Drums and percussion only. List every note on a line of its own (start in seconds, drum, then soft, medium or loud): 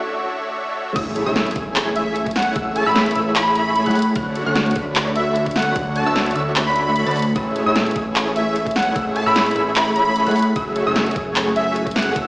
0.66 high tom medium
0.76 mid tom medium
0.86 mid tom medium
0.96 kick loud
0.96 closed hi-hat medium
0.96 crash loud
1.16 closed hi-hat medium
1.36 snare medium
1.36 closed hi-hat medium
1.46 closed hi-hat medium
1.51 closed hi-hat medium
1.56 kick loud
1.56 closed hi-hat medium
1.76 clap loud
1.76 closed hi-hat medium
1.96 closed hi-hat medium
2.16 closed hi-hat medium
2.26 kick medium
2.26 closed hi-hat soft
2.31 closed hi-hat medium
2.36 snare medium
2.36 closed hi-hat medium
2.36 open hi-hat medium
2.42 closed hi-hat medium
2.56 kick loud
2.56 closed hi-hat medium
2.76 closed hi-hat medium
2.96 snare medium
2.96 closed hi-hat medium
3.06 closed hi-hat soft
3.11 closed hi-hat medium
3.16 closed hi-hat medium
3.36 clap loud
3.36 closed hi-hat medium
3.55 closed hi-hat medium
3.76 closed hi-hat medium
3.86 closed hi-hat soft
3.91 closed hi-hat medium
3.95 closed hi-hat medium
3.95 open hi-hat medium
4.02 closed hi-hat medium
4.16 kick loud
4.16 closed hi-hat medium
4.36 closed hi-hat medium
4.55 snare medium
4.55 closed hi-hat medium
4.66 closed hi-hat soft
4.71 closed hi-hat medium
4.76 kick loud
4.76 closed hi-hat medium
4.96 clap loud
4.96 closed hi-hat medium
5.16 closed hi-hat medium
5.36 closed hi-hat medium
5.46 kick medium
5.46 closed hi-hat soft
5.51 closed hi-hat medium
5.56 snare medium
5.56 closed hi-hat medium
5.56 open hi-hat medium
5.62 closed hi-hat medium
5.76 kick loud
5.76 closed hi-hat medium
5.96 closed hi-hat medium
6.16 snare medium
6.16 closed hi-hat medium
6.26 closed hi-hat medium
6.31 closed hi-hat medium
6.36 closed hi-hat medium
6.56 clap loud
6.56 closed hi-hat medium
6.76 closed hi-hat medium
6.96 closed hi-hat medium
7.07 closed hi-hat soft
7.11 closed hi-hat medium
7.16 closed hi-hat medium
7.16 open hi-hat medium
7.22 closed hi-hat medium
7.36 kick loud
7.36 closed hi-hat medium
7.56 closed hi-hat medium
7.76 snare medium
7.76 closed hi-hat medium
7.86 closed hi-hat soft
7.91 closed hi-hat medium
7.96 kick loud
7.96 closed hi-hat medium
8.16 clap loud
8.16 closed hi-hat medium
8.36 closed hi-hat medium
8.56 closed hi-hat medium
8.66 kick medium
8.66 closed hi-hat soft
8.71 closed hi-hat medium
8.76 snare medium
8.76 closed hi-hat medium
8.76 open hi-hat medium
8.83 closed hi-hat medium
8.96 kick loud
8.96 closed hi-hat medium
9.16 closed hi-hat medium
9.36 snare medium
9.36 closed hi-hat medium
9.46 closed hi-hat soft
9.51 closed hi-hat medium
9.56 closed hi-hat medium
9.76 clap loud
9.76 closed hi-hat medium
9.96 closed hi-hat medium
10.16 closed hi-hat medium
10.27 closed hi-hat soft
10.31 closed hi-hat medium
10.36 closed hi-hat medium
10.36 open hi-hat medium
10.42 closed hi-hat medium
10.56 kick loud
10.56 closed hi-hat medium
10.76 closed hi-hat medium
10.96 snare medium
10.96 closed hi-hat medium
11.07 closed hi-hat soft
11.11 closed hi-hat medium
11.16 kick loud
11.16 closed hi-hat medium
11.36 clap loud
11.36 closed hi-hat medium
11.56 closed hi-hat medium
11.76 closed hi-hat medium
11.87 kick medium
11.87 closed hi-hat soft
11.91 closed hi-hat medium
11.96 snare medium
11.96 closed hi-hat medium
11.96 open hi-hat medium
12.03 closed hi-hat medium
12.16 kick loud
12.16 closed hi-hat medium